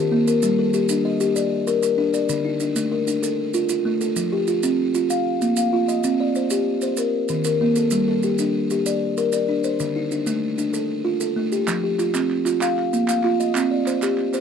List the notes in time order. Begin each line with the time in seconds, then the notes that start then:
Already playing: D#3 G4
0.12 A#3
0.28 A#4, maracas
0.42 G3, maracas
0.59 A4
0.73 G4, maracas
0.89 D4, maracas
1.05 D#5
1.20 G4, maracas
1.36 D5, maracas
1.67 A#4, maracas
1.82 A#4, maracas
1.98 D4
2.14 D5, maracas
2.29 D3, maracas
2.45 D#4
2.60 D4, maracas
2.76 A3, maracas
2.92 A#4
3.07 D4, maracas
3.23 A4, maracas
3.54 F4, maracas
3.69 F4, maracas
3.85 A3
4.01 A4, maracas
4.16 F3, maracas
4.32 G4
4.47 F4, maracas
4.63 C4, maracas
4.94 F4, maracas
5.10 F5, maracas
5.42 A#3, maracas
5.56 F5, maracas
5.73 F4
5.88 D#5, maracas
6.04 C4, maracas
6.20 D5
6.35 C5, maracas
6.50 G4, maracas
6.81 C5, maracas
6.97 A#4, maracas
7.28 D#3, maracas
7.44 A#4, maracas
7.61 A#3
7.76 A4, maracas
7.91 G3, maracas
8.08 A4
8.23 G4, maracas
8.38 D4, maracas
8.70 G4, maracas
8.86 D5, maracas
9.17 A#4, maracas
9.32 D5, maracas
9.49 D4
9.64 C5, maracas
9.80 D3, maracas
9.96 D#4
10.11 D4, maracas
10.27 A3, maracas
10.58 D4, maracas
10.73 A4, maracas
11.04 F4
11.20 A4, maracas
11.36 A3
11.52 G4, maracas
11.67 F3, clap, maracas
11.84 G4
11.99 F4, clap, maracas
12.14 C4, clap, maracas
12.31 clap
12.46 F4, clap, maracas
12.61 F5, clap, maracas
12.77 clap
12.93 A#3, maracas
13.08 F5, clap, maracas
13.23 F4, clap
13.40 D#5, maracas
13.55 C4, clap, maracas
13.71 D5
13.86 C5, clap, maracas
14.02 G4, clap, maracas
14.18 clap
14.33 C5, clap, maracas